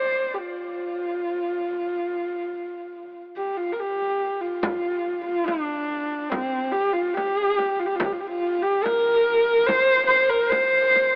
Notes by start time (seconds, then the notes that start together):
Already playing: C5
0.34 G4
0.38 F4
3.36 G4
3.57 F4
3.72 A#4
3.79 G4
4.41 F4
4.63 frame drum
5.25 F4, frame drum
5.46 D4, frame drum
6.29 C4, frame drum
6.71 G4, frame drum
6.93 F4, frame drum
7.14 G4, frame drum
7.59 frame drum
7.79 F4
7.85 G4
7.95 F4
8.00 frame drum
8.04 G4
8.12 F4
8.20 G4
8.27 F4
8.62 G4, frame drum
8.83 A#4, frame drum
9.67 C5, frame drum
10.07 C5, frame drum
10.29 A#4, frame drum
10.50 C5, frame drum
10.96 frame drum